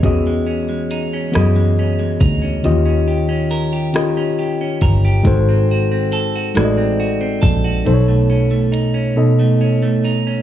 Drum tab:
HH |x-xx-x|x-xx-x|x-xx-x|x-x---|
SD |---r--|---r--|---r--|------|
BD |o----o|-----o|o----o|------|